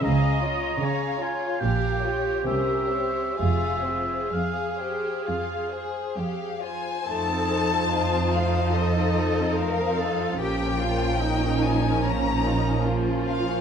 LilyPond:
<<
  \new Staff \with { instrumentName = "Oboe" } { \time 4/4 \key f \minor \tempo 4 = 72 bes''4. aes''8 g''4 e''4 | e''4 f''2 r4 | r1 | r1 | }
  \new Staff \with { instrumentName = "Violin section" } { \time 4/4 \key f \minor f''8 des''8 f''8 des''8 f''8 des''8 c''8 des''8 | f''8 c''8 f''8 c''8 f''8 c''8 f''8 <c'' aes''>8 | a''4. f''8 ees''4 f''4 | g''4. aes''8 bes''4 r8 f''8 | }
  \new Staff \with { instrumentName = "Viola section" } { \time 4/4 \key f \minor ees''4 des''8 f'8 g'2 | aes'2.~ aes'8 r8 | <f ees'>1 | <f des'>1 | }
  \new Staff \with { instrumentName = "Cello section" } { \time 4/4 \key f \minor des4 des4 bes,4 c4 | f,4 f,4 f,4 f,4 | a'4 f'4 a'4 bes'8 a'8 | g'8 f'8 ees'4 des'8 ees'8 f'4 | }
  \new Staff \with { instrumentName = "Violin section" } { \time 4/4 \key f \minor << { <des' aes'>8 f'8 <des' aes'>8 f'8 <g' bes'>8 <f' g'>8 <des' bes'>8 <c' c''>8 | <f' aes'>8 <c' f'>8 aes'8 g'8 f'8 aes'8 g'8 f'8 | c''1 | bes'1 | } \\ { r1 | r1 | a16 c'16 ees'16 f'16 ees'16 c'16 a16 c'16 ees'16 f'16 ees'16 c'16 a16 c'16 ees'16 f'16 | bes16 des'16 f'16 des'16 bes16 des'16 f'16 des'16 bes16 des'16 f'16 des'16 bes16 des'16 f'16 des'16 | } >> }
  \new Staff \with { instrumentName = "Double bass section" } { \clef bass \time 4/4 \key f \minor des,4 r4 bes,,4 c,4 | f,,4 r2. | f,1 | bes,,1 | }
>>